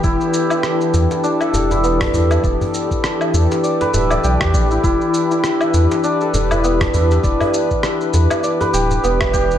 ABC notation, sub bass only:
X:1
M:4/4
L:1/16
Q:"Swing 16ths" 1/4=100
K:Em
V:1 name="Sub bass" clef=bass
E,,, z4 z E,, z3 E,,,4 E,,2 | E,,, z4 z E,, z3 D,,,2 B,,, E,, A,,,2 | E,,, z4 z E,, z3 E,,,4 E,,2 | E,,, z4 z E,, z3 D,,,2 E,,,4 |]